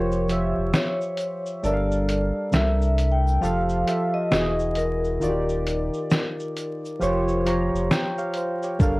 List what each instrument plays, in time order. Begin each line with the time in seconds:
Already playing: sub bass F1, synth keys F3 F4 G4 C5 C#5, vibraphone A#4
0.12 shaker
0.28 synth keys F3 F4 G4 C#5, closed hi-hat, shaker
0.32 synth keys E5
0.57 sub bass F1
0.73 vibraphone C#5, snare, shaker
1.01 shaker
1.17 closed hi-hat, shaker
1.20 shaker
1.46 shaker
1.63 sub bass G1, synth keys G3 D4 A4 A#4 E5, vibraphone D5, shaker
1.73 synth keys F5
1.91 shaker
2.09 closed hi-hat, shaker
2.51 sub bass C2, synth keys C3 G3 D4 A4 A#4, vibraphone E5, snare, shaker
2.55 synth keys E5
2.82 shaker
2.98 closed hi-hat, shaker
3.12 vibraphone G5
3.27 shaker
3.41 sub bass F1, synth keys F3 F4 G4 A4, vibraphone F5, shaker
3.44 synth keys F5, shaker
3.69 shaker
3.85 synth keys F3 F4 G4 A4 E5, closed hi-hat, shaker
4.14 vibraphone D#5
4.31 sub bass E1, synth keys E3 E4 F#4 G#4, snare, shaker
4.34 synth keys D#5, shaker
4.59 shaker
4.75 vibraphone A#4, closed hi-hat, shaker
4.79 shaker
5.04 shaker
5.20 sub bass D#1, synth keys D#3 D#4 F4 F#4, shaker
5.24 synth keys D5, shaker
5.30 synth keys G4
5.49 shaker
5.67 closed hi-hat, shaker
5.68 shaker
5.94 shaker
6.10 snare, shaker
6.40 shaker
6.57 closed hi-hat, shaker
6.85 shaker
7.00 sub bass F1, synth keys F3 F4 G4 C5 C#5, shaker
7.28 shaker
7.45 synth keys F3 F4 G4 C5 C#5 A#5, closed hi-hat, shaker
7.73 sub bass F1, shaker
7.91 synth keys G5, snare, shaker
8.18 synth keys G4 C#5 F5, shaker
8.34 synth keys F5, closed hi-hat, shaker
8.37 synth keys C5, shaker
8.63 synth keys G4 C#5, shaker
8.79 sub bass G1, synth keys G3 D4 A4, kick, shaker
8.82 synth keys A#4 F5, shaker